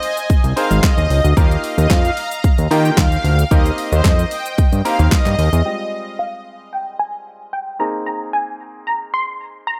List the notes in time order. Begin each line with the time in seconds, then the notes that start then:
0.03 G#5, open hi-hat, shaker
0.17 closed hi-hat, shaker
0.30 kick, closed hi-hat, shaker
0.44 C2, closed hi-hat, shaker
0.56 C4 D#4 G#4 A#4 C5 F5, open hi-hat, shaker
0.71 G#1, closed hi-hat, shaker
0.83 D#5, kick, snare, clap, closed hi-hat, shaker
0.98 D#2, closed hi-hat, shaker
1.10 C#2, open hi-hat, shaker
1.24 D2, closed hi-hat, shaker
1.37 D#2 A#3 D#4 F4 G4 A#4 F5, kick, closed hi-hat, shaker
1.51 closed hi-hat, shaker
1.64 open hi-hat, shaker
1.78 D#2 D#5, closed hi-hat, shaker
1.90 F2 F5, kick, snare, clap, closed hi-hat, shaker
2.05 closed hi-hat, shaker
2.17 A#5, open hi-hat, shaker
2.31 closed hi-hat, shaker
2.44 kick, closed hi-hat, shaker
2.58 D#2, closed hi-hat, shaker
2.71 D#3 A#3 D#4 F4 G4 A#4 G5, open hi-hat, shaker
2.85 closed hi-hat, shaker
2.97 D#2 F5, kick, snare, clap, closed hi-hat, shaker
3.12 closed hi-hat, shaker
3.24 D2, open hi-hat, shaker
3.39 closed hi-hat, shaker
3.51 D#2 A#3 C4 D#4 G4 A#4 D#5, kick, closed hi-hat, shaker
3.66 closed hi-hat, shaker
3.78 open hi-hat, shaker
3.92 D#2 C5, closed hi-hat, shaker
4.04 F2 D#5, kick, snare, clap, closed hi-hat, shaker
4.19 closed hi-hat, shaker
4.31 G5, open hi-hat, shaker
4.46 closed hi-hat, shaker
4.58 kick, closed hi-hat, shaker
4.73 G2, closed hi-hat, shaker
4.85 A#3 C4 D#4 G4 A#4 F5, open hi-hat, shaker
4.99 D#2, closed hi-hat, shaker
5.11 D#5, kick, snare, clap, closed hi-hat, shaker
5.26 G2, clap, closed hi-hat, shaker
5.39 D#2, open hi-hat, shaker
5.53 E2, closed hi-hat, shaker
5.65 G3 G#3 C4 F4 G5
6.19 F5
6.73 G5
6.99 G#5
7.53 G5
7.79 A#3 C4 D#4 G#4 A#5
8.06 A#5
8.33 G#5
8.87 A#5
9.14 C6
9.67 A#5